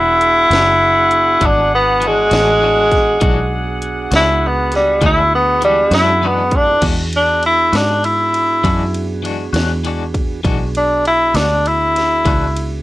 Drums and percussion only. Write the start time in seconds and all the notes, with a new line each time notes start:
0.21 closed hi-hat
0.51 snare, closed hi-hat
1.11 closed hi-hat
1.41 kick, closed hi-hat
2.02 closed hi-hat
2.31 snare, closed hi-hat
2.91 kick, snare, closed hi-hat
3.21 kick, closed hi-hat
3.82 closed hi-hat
4.11 snare, closed hi-hat
4.72 snare, closed hi-hat
5.02 kick, closed hi-hat
5.62 closed hi-hat
5.92 snare, closed hi-hat
6.51 kick, closed hi-hat
6.82 kick, crash, ride
7.13 ride
7.43 ride
7.73 snare, ride
8.04 ride
8.34 ride
8.64 kick, ride
8.94 ride
9.25 ride
9.54 snare, ride
9.85 ride
10.14 kick, ride
10.44 kick, ride
10.75 ride
11.05 ride
11.35 snare, ride
11.66 ride
11.96 snare, ride
12.26 kick, ride
12.57 ride